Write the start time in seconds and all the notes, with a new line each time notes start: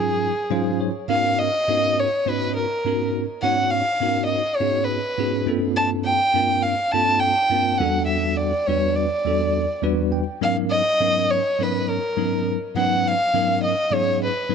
Already playing: G#2 F#3 C#4 D#4 F4 G#4
0.50 G#2 F#3 C#4 D#4 F4 C5 F5
0.80 C#5
1.08 G#2 B3 C#4 D#4 F#4 A#4 F5
1.39 D#5
1.68 G#2 B3 C#4 D#4 F#4 A#4
1.99 C#5
2.26 G#2 B3 C#4 D#4 F#4 B4
2.56 A#4
2.85 G#2 B3 C#4 D#4 F#4 A#4
3.43 G#2 B3 C#4 D#4 F#4 C#5 F#5
3.71 F5
4.01 G#2 B3 C#4 D#4 F#4 A#4
4.26 D#5
4.56 C#5
4.60 G#2 B3 C#4 D#4 F#4 G#4
4.84 B4
5.18 G#2 B3 C#4 D#4 F#4 G#4
5.46 G2 A#3 C4 D4 F4 A4
5.76 A5
6.05 G5
6.34 G2 A#3 C4 D4 F4 A#4
6.62 F5
6.91 G2 A#3 C4 D4 F4 A4 A5
7.19 G5
7.50 G2 A#3 C4 D4 F4 A#4
7.77 E2 G3 B3 D4 F#4 A4 F#5
8.07 E5
8.37 D5
8.66 E2 G3 B3 D4 F#4 B4 C#5
8.95 D5
9.25 E2 G3 B3 D4 F#4 A4
9.82 E2 G3 B3 D4 F#4 B4 D5
10.12 G5
10.41 G#2 F#3 B3 C#4 D#4 A#4 F5
10.70 D#5
11.00 G#2 F#3 B3 C#4 D#4 A#4
11.30 C#5
11.59 G#2 F#3 B3 C#4 D#4 A#4 B4
11.89 A#4
12.17 G#2 F#3 B3 C#4 D#4 A#4
12.75 G#2 F#3 B3 C#4 D#4 B4 F#5
13.07 F5
13.34 G#2 F#3 B3 C#4 D#4 A#4
13.64 D#5
13.91 G#2 F#3 B3 C#4 D#4 G#4 C#5
14.24 B4
14.49 G#2 F#3 B3 C#4 D#4 B4